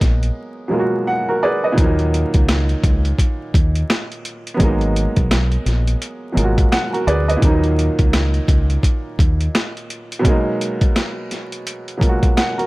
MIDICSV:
0, 0, Header, 1, 4, 480
1, 0, Start_track
1, 0, Key_signature, -6, "minor"
1, 0, Tempo, 705882
1, 1207, Time_signature, 4, 2, 24, 8
1, 8613, End_track
2, 0, Start_track
2, 0, Title_t, "Upright piano"
2, 0, Program_c, 0, 0
2, 0, Control_c, 0, 64, 127
2, 0, Note_on_c, 0, 54, 71
2, 0, Note_on_c, 0, 56, 67
2, 0, Note_on_c, 0, 58, 68
2, 0, Note_on_c, 0, 59, 76
2, 0, Note_on_c, 0, 63, 81
2, 444, Note_off_c, 0, 59, 0
2, 453, Note_off_c, 0, 54, 0
2, 461, Note_off_c, 0, 56, 0
2, 463, Note_on_c, 0, 47, 55
2, 470, Note_off_c, 0, 58, 0
2, 471, Note_on_c, 0, 54, 54
2, 478, Note_off_c, 0, 63, 0
2, 479, Note_on_c, 0, 56, 50
2, 487, Note_on_c, 0, 58, 51
2, 496, Note_on_c, 0, 65, 47
2, 540, Note_on_c, 0, 66, 64
2, 546, Note_off_c, 0, 65, 0
2, 730, Note_on_c, 0, 78, 75
2, 753, Note_off_c, 0, 66, 0
2, 874, Note_on_c, 0, 70, 66
2, 878, Note_on_c, 0, 66, 56
2, 952, Note_off_c, 0, 78, 0
2, 962, Note_off_c, 0, 70, 0
2, 964, Note_off_c, 0, 66, 0
2, 970, Note_on_c, 0, 71, 70
2, 971, Note_on_c, 0, 74, 74
2, 974, Note_on_c, 0, 68, 65
2, 1108, Note_off_c, 0, 71, 0
2, 1112, Note_off_c, 0, 68, 0
2, 1113, Note_on_c, 0, 75, 65
2, 1118, Note_on_c, 0, 71, 56
2, 1170, Note_on_c, 0, 46, 79
2, 1187, Note_on_c, 0, 51, 66
2, 1192, Note_off_c, 0, 74, 0
2, 1195, Note_off_c, 0, 47, 0
2, 1199, Note_off_c, 0, 54, 0
2, 1203, Note_off_c, 0, 56, 0
2, 1204, Note_on_c, 0, 53, 53
2, 1207, Note_off_c, 0, 58, 0
2, 1216, Control_c, 0, 64, 0
2, 1221, Note_on_c, 0, 58, 71
2, 1238, Note_on_c, 0, 63, 84
2, 1247, Note_on_c, 0, 54, 70
2, 1260, Note_off_c, 0, 53, 0
2, 1328, Control_c, 0, 64, 127
2, 1343, Note_off_c, 0, 75, 0
2, 1345, Note_off_c, 0, 71, 0
2, 3081, Note_off_c, 0, 46, 0
2, 3089, Note_on_c, 0, 59, 75
2, 3090, Note_off_c, 0, 51, 0
2, 3095, Note_off_c, 0, 54, 0
2, 3106, Note_on_c, 0, 54, 74
2, 3107, Note_off_c, 0, 58, 0
2, 3115, Note_off_c, 0, 63, 0
2, 3122, Note_on_c, 0, 56, 68
2, 3136, Control_c, 0, 64, 0
2, 3139, Note_on_c, 0, 58, 70
2, 3156, Note_on_c, 0, 63, 83
2, 3237, Control_c, 0, 64, 127
2, 4284, Note_off_c, 0, 59, 0
2, 4292, Note_off_c, 0, 54, 0
2, 4300, Note_on_c, 0, 47, 54
2, 4301, Note_off_c, 0, 56, 0
2, 4309, Note_off_c, 0, 58, 0
2, 4309, Note_on_c, 0, 54, 57
2, 4318, Note_off_c, 0, 63, 0
2, 4318, Note_on_c, 0, 56, 51
2, 4326, Note_on_c, 0, 58, 52
2, 4334, Note_on_c, 0, 65, 50
2, 4378, Note_on_c, 0, 66, 66
2, 4385, Note_off_c, 0, 65, 0
2, 4568, Note_on_c, 0, 78, 80
2, 4593, Note_off_c, 0, 66, 0
2, 4711, Note_on_c, 0, 70, 68
2, 4715, Note_on_c, 0, 66, 57
2, 4791, Note_off_c, 0, 78, 0
2, 4800, Note_off_c, 0, 70, 0
2, 4802, Note_off_c, 0, 66, 0
2, 4808, Note_on_c, 0, 71, 72
2, 4809, Note_on_c, 0, 74, 76
2, 4812, Note_on_c, 0, 68, 68
2, 4946, Note_off_c, 0, 71, 0
2, 4951, Note_off_c, 0, 68, 0
2, 4952, Note_on_c, 0, 75, 68
2, 4956, Note_on_c, 0, 71, 59
2, 5008, Note_on_c, 0, 46, 80
2, 5025, Note_on_c, 0, 51, 69
2, 5031, Note_off_c, 0, 74, 0
2, 5034, Note_off_c, 0, 47, 0
2, 5038, Note_off_c, 0, 54, 0
2, 5041, Note_on_c, 0, 53, 55
2, 5043, Note_off_c, 0, 56, 0
2, 5046, Note_off_c, 0, 58, 0
2, 5056, Control_c, 0, 64, 0
2, 5059, Note_on_c, 0, 58, 74
2, 5075, Note_on_c, 0, 63, 89
2, 5086, Note_on_c, 0, 54, 69
2, 5099, Note_off_c, 0, 53, 0
2, 5182, Note_off_c, 0, 75, 0
2, 5184, Note_off_c, 0, 71, 0
2, 5196, Control_c, 0, 64, 127
2, 6921, Note_off_c, 0, 46, 0
2, 6929, Note_off_c, 0, 51, 0
2, 6931, Note_on_c, 0, 47, 78
2, 6938, Note_off_c, 0, 54, 0
2, 6946, Note_off_c, 0, 58, 0
2, 6948, Note_on_c, 0, 54, 76
2, 6954, Note_off_c, 0, 63, 0
2, 6965, Note_on_c, 0, 56, 70
2, 6975, Control_c, 0, 64, 0
2, 6981, Note_on_c, 0, 58, 71
2, 6998, Note_on_c, 0, 63, 82
2, 7115, Control_c, 0, 64, 127
2, 8125, Note_off_c, 0, 47, 0
2, 8134, Note_off_c, 0, 54, 0
2, 8142, Note_off_c, 0, 56, 0
2, 8143, Note_on_c, 0, 47, 53
2, 8150, Note_on_c, 0, 54, 56
2, 8151, Note_off_c, 0, 58, 0
2, 8158, Note_on_c, 0, 56, 51
2, 8159, Note_off_c, 0, 63, 0
2, 8168, Note_on_c, 0, 58, 54
2, 8175, Note_on_c, 0, 65, 49
2, 8220, Note_on_c, 0, 66, 69
2, 8226, Note_off_c, 0, 65, 0
2, 8411, Note_on_c, 0, 78, 77
2, 8434, Note_off_c, 0, 66, 0
2, 8554, Note_on_c, 0, 70, 67
2, 8557, Note_on_c, 0, 66, 57
2, 8613, Note_off_c, 0, 47, 0
2, 8613, Note_off_c, 0, 54, 0
2, 8613, Note_off_c, 0, 56, 0
2, 8613, Note_off_c, 0, 58, 0
2, 8613, Note_off_c, 0, 66, 0
2, 8613, Note_off_c, 0, 70, 0
2, 8613, Note_off_c, 0, 78, 0
2, 8613, End_track
3, 0, Start_track
3, 0, Title_t, "Fingered electric bass"
3, 0, Program_c, 1, 33
3, 8, Note_on_c, 1, 34, 89
3, 199, Note_off_c, 1, 34, 0
3, 1208, Note_on_c, 1, 39, 98
3, 1518, Note_off_c, 1, 39, 0
3, 1594, Note_on_c, 1, 37, 85
3, 1859, Note_off_c, 1, 37, 0
3, 1929, Note_on_c, 1, 37, 101
3, 2120, Note_off_c, 1, 37, 0
3, 2409, Note_on_c, 1, 39, 96
3, 2600, Note_off_c, 1, 39, 0
3, 3128, Note_on_c, 1, 32, 110
3, 3437, Note_off_c, 1, 32, 0
3, 3514, Note_on_c, 1, 35, 95
3, 3779, Note_off_c, 1, 35, 0
3, 3848, Note_on_c, 1, 34, 90
3, 4039, Note_off_c, 1, 34, 0
3, 4327, Note_on_c, 1, 32, 97
3, 4519, Note_off_c, 1, 32, 0
3, 4807, Note_on_c, 1, 38, 91
3, 4998, Note_off_c, 1, 38, 0
3, 5048, Note_on_c, 1, 39, 99
3, 5357, Note_off_c, 1, 39, 0
3, 5434, Note_on_c, 1, 37, 86
3, 5699, Note_off_c, 1, 37, 0
3, 5768, Note_on_c, 1, 37, 98
3, 5959, Note_off_c, 1, 37, 0
3, 6248, Note_on_c, 1, 39, 98
3, 6439, Note_off_c, 1, 39, 0
3, 8613, End_track
4, 0, Start_track
4, 0, Title_t, "Drums"
4, 8, Note_on_c, 9, 36, 100
4, 11, Note_on_c, 9, 42, 67
4, 16, Note_on_c, 9, 38, 34
4, 76, Note_off_c, 9, 36, 0
4, 79, Note_off_c, 9, 42, 0
4, 84, Note_off_c, 9, 38, 0
4, 155, Note_on_c, 9, 42, 45
4, 223, Note_off_c, 9, 42, 0
4, 1208, Note_on_c, 9, 36, 114
4, 1208, Note_on_c, 9, 42, 93
4, 1276, Note_off_c, 9, 36, 0
4, 1276, Note_off_c, 9, 42, 0
4, 1352, Note_on_c, 9, 42, 37
4, 1420, Note_off_c, 9, 42, 0
4, 1456, Note_on_c, 9, 42, 78
4, 1524, Note_off_c, 9, 42, 0
4, 1590, Note_on_c, 9, 42, 53
4, 1594, Note_on_c, 9, 36, 90
4, 1658, Note_off_c, 9, 42, 0
4, 1662, Note_off_c, 9, 36, 0
4, 1690, Note_on_c, 9, 37, 93
4, 1691, Note_on_c, 9, 42, 88
4, 1692, Note_on_c, 9, 38, 117
4, 1758, Note_off_c, 9, 37, 0
4, 1759, Note_off_c, 9, 42, 0
4, 1760, Note_off_c, 9, 38, 0
4, 1831, Note_on_c, 9, 42, 37
4, 1899, Note_off_c, 9, 42, 0
4, 1928, Note_on_c, 9, 36, 102
4, 1930, Note_on_c, 9, 42, 72
4, 1996, Note_off_c, 9, 36, 0
4, 1998, Note_off_c, 9, 42, 0
4, 2074, Note_on_c, 9, 42, 48
4, 2142, Note_off_c, 9, 42, 0
4, 2166, Note_on_c, 9, 36, 81
4, 2171, Note_on_c, 9, 42, 91
4, 2234, Note_off_c, 9, 36, 0
4, 2239, Note_off_c, 9, 42, 0
4, 2408, Note_on_c, 9, 36, 100
4, 2414, Note_on_c, 9, 42, 81
4, 2476, Note_off_c, 9, 36, 0
4, 2482, Note_off_c, 9, 42, 0
4, 2553, Note_on_c, 9, 42, 59
4, 2621, Note_off_c, 9, 42, 0
4, 2651, Note_on_c, 9, 37, 90
4, 2651, Note_on_c, 9, 42, 77
4, 2653, Note_on_c, 9, 38, 109
4, 2719, Note_off_c, 9, 37, 0
4, 2719, Note_off_c, 9, 42, 0
4, 2721, Note_off_c, 9, 38, 0
4, 2799, Note_on_c, 9, 42, 36
4, 2867, Note_off_c, 9, 42, 0
4, 2890, Note_on_c, 9, 42, 75
4, 2958, Note_off_c, 9, 42, 0
4, 3039, Note_on_c, 9, 42, 57
4, 3107, Note_off_c, 9, 42, 0
4, 3127, Note_on_c, 9, 42, 98
4, 3128, Note_on_c, 9, 36, 114
4, 3195, Note_off_c, 9, 42, 0
4, 3196, Note_off_c, 9, 36, 0
4, 3271, Note_on_c, 9, 42, 37
4, 3339, Note_off_c, 9, 42, 0
4, 3375, Note_on_c, 9, 42, 81
4, 3443, Note_off_c, 9, 42, 0
4, 3511, Note_on_c, 9, 42, 52
4, 3514, Note_on_c, 9, 36, 90
4, 3579, Note_off_c, 9, 42, 0
4, 3582, Note_off_c, 9, 36, 0
4, 3611, Note_on_c, 9, 37, 97
4, 3611, Note_on_c, 9, 42, 86
4, 3613, Note_on_c, 9, 38, 120
4, 3679, Note_off_c, 9, 37, 0
4, 3679, Note_off_c, 9, 42, 0
4, 3681, Note_off_c, 9, 38, 0
4, 3751, Note_on_c, 9, 42, 37
4, 3819, Note_off_c, 9, 42, 0
4, 3851, Note_on_c, 9, 42, 69
4, 3857, Note_on_c, 9, 38, 36
4, 3919, Note_off_c, 9, 42, 0
4, 3925, Note_off_c, 9, 38, 0
4, 3995, Note_on_c, 9, 42, 49
4, 4063, Note_off_c, 9, 42, 0
4, 4092, Note_on_c, 9, 42, 89
4, 4160, Note_off_c, 9, 42, 0
4, 4334, Note_on_c, 9, 42, 82
4, 4402, Note_off_c, 9, 42, 0
4, 4474, Note_on_c, 9, 36, 99
4, 4474, Note_on_c, 9, 42, 62
4, 4542, Note_off_c, 9, 36, 0
4, 4542, Note_off_c, 9, 42, 0
4, 4571, Note_on_c, 9, 37, 91
4, 4572, Note_on_c, 9, 42, 82
4, 4573, Note_on_c, 9, 38, 113
4, 4639, Note_off_c, 9, 37, 0
4, 4640, Note_off_c, 9, 42, 0
4, 4641, Note_off_c, 9, 38, 0
4, 4721, Note_on_c, 9, 42, 36
4, 4789, Note_off_c, 9, 42, 0
4, 4812, Note_on_c, 9, 42, 74
4, 4880, Note_off_c, 9, 42, 0
4, 4961, Note_on_c, 9, 42, 56
4, 5029, Note_off_c, 9, 42, 0
4, 5048, Note_on_c, 9, 36, 114
4, 5048, Note_on_c, 9, 42, 97
4, 5116, Note_off_c, 9, 36, 0
4, 5116, Note_off_c, 9, 42, 0
4, 5192, Note_on_c, 9, 42, 38
4, 5260, Note_off_c, 9, 42, 0
4, 5296, Note_on_c, 9, 42, 79
4, 5364, Note_off_c, 9, 42, 0
4, 5431, Note_on_c, 9, 42, 51
4, 5433, Note_on_c, 9, 36, 90
4, 5499, Note_off_c, 9, 42, 0
4, 5501, Note_off_c, 9, 36, 0
4, 5530, Note_on_c, 9, 37, 92
4, 5531, Note_on_c, 9, 42, 89
4, 5532, Note_on_c, 9, 38, 114
4, 5598, Note_off_c, 9, 37, 0
4, 5599, Note_off_c, 9, 42, 0
4, 5600, Note_off_c, 9, 38, 0
4, 5671, Note_on_c, 9, 42, 36
4, 5739, Note_off_c, 9, 42, 0
4, 5768, Note_on_c, 9, 36, 101
4, 5770, Note_on_c, 9, 42, 71
4, 5836, Note_off_c, 9, 36, 0
4, 5838, Note_off_c, 9, 42, 0
4, 5915, Note_on_c, 9, 42, 48
4, 5983, Note_off_c, 9, 42, 0
4, 6006, Note_on_c, 9, 36, 83
4, 6013, Note_on_c, 9, 42, 91
4, 6074, Note_off_c, 9, 36, 0
4, 6081, Note_off_c, 9, 42, 0
4, 6248, Note_on_c, 9, 36, 100
4, 6256, Note_on_c, 9, 42, 80
4, 6316, Note_off_c, 9, 36, 0
4, 6324, Note_off_c, 9, 42, 0
4, 6396, Note_on_c, 9, 42, 61
4, 6464, Note_off_c, 9, 42, 0
4, 6493, Note_on_c, 9, 37, 91
4, 6493, Note_on_c, 9, 42, 77
4, 6495, Note_on_c, 9, 38, 111
4, 6561, Note_off_c, 9, 37, 0
4, 6561, Note_off_c, 9, 42, 0
4, 6563, Note_off_c, 9, 38, 0
4, 6643, Note_on_c, 9, 42, 37
4, 6711, Note_off_c, 9, 42, 0
4, 6734, Note_on_c, 9, 42, 77
4, 6802, Note_off_c, 9, 42, 0
4, 6882, Note_on_c, 9, 42, 58
4, 6950, Note_off_c, 9, 42, 0
4, 6969, Note_on_c, 9, 36, 112
4, 6970, Note_on_c, 9, 42, 98
4, 7037, Note_off_c, 9, 36, 0
4, 7038, Note_off_c, 9, 42, 0
4, 7217, Note_on_c, 9, 42, 80
4, 7285, Note_off_c, 9, 42, 0
4, 7352, Note_on_c, 9, 42, 52
4, 7354, Note_on_c, 9, 36, 89
4, 7420, Note_off_c, 9, 42, 0
4, 7422, Note_off_c, 9, 36, 0
4, 7452, Note_on_c, 9, 37, 96
4, 7452, Note_on_c, 9, 42, 90
4, 7454, Note_on_c, 9, 38, 118
4, 7520, Note_off_c, 9, 37, 0
4, 7520, Note_off_c, 9, 42, 0
4, 7522, Note_off_c, 9, 38, 0
4, 7692, Note_on_c, 9, 42, 71
4, 7697, Note_on_c, 9, 38, 35
4, 7760, Note_off_c, 9, 42, 0
4, 7765, Note_off_c, 9, 38, 0
4, 7836, Note_on_c, 9, 42, 49
4, 7904, Note_off_c, 9, 42, 0
4, 7934, Note_on_c, 9, 42, 91
4, 8002, Note_off_c, 9, 42, 0
4, 8078, Note_on_c, 9, 42, 36
4, 8146, Note_off_c, 9, 42, 0
4, 8169, Note_on_c, 9, 36, 101
4, 8177, Note_on_c, 9, 42, 81
4, 8237, Note_off_c, 9, 36, 0
4, 8245, Note_off_c, 9, 42, 0
4, 8315, Note_on_c, 9, 36, 99
4, 8316, Note_on_c, 9, 42, 59
4, 8383, Note_off_c, 9, 36, 0
4, 8384, Note_off_c, 9, 42, 0
4, 8413, Note_on_c, 9, 37, 88
4, 8413, Note_on_c, 9, 42, 77
4, 8415, Note_on_c, 9, 38, 113
4, 8481, Note_off_c, 9, 37, 0
4, 8481, Note_off_c, 9, 42, 0
4, 8483, Note_off_c, 9, 38, 0
4, 8563, Note_on_c, 9, 42, 36
4, 8613, Note_off_c, 9, 42, 0
4, 8613, End_track
0, 0, End_of_file